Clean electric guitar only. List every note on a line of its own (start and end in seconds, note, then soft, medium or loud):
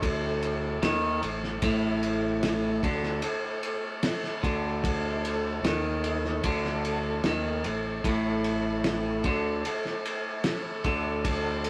0.04 0.82 D3 loud
0.82 1.21 D#3 loud
1.23 1.55 A2 medium
1.63 2.82 A2 loud
2.84 3.22 D3 loud
4.43 5.62 D3 loud
5.65 6.43 D#3 medium
6.45 7.24 D3 loud
7.26 7.64 D#3 loud
7.66 7.97 A2 medium
8.05 9.24 A2 loud
9.25 9.64 D3 loud
10.85 11.70 D3 medium